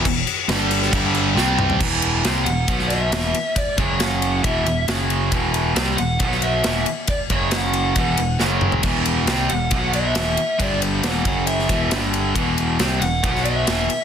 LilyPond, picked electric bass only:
\new Staff \with { instrumentName = "Picked electric bass" } { \clef bass \time 4/4 \key e \minor \tempo 4 = 137 e,,8 r8 g,,4 g,,4 c,4 | e,,4 c,8 e,,8 b,,4 e,,8 r8 | r8 fis,,4. e,,8 e,,8 fis,,4 | e,,4 c,8 e,,8 b,,4 r4 |
r8 fis,,4. e,,8 e,,8 fis,,4 | e,,4 c,8 e,,8 b,,4 e,,8 r8 | g,,4 e,,8 fis,,4 e,,8 g,,4 | e,,4 c,8 e,,8 b,,4 e,,8 r8 | }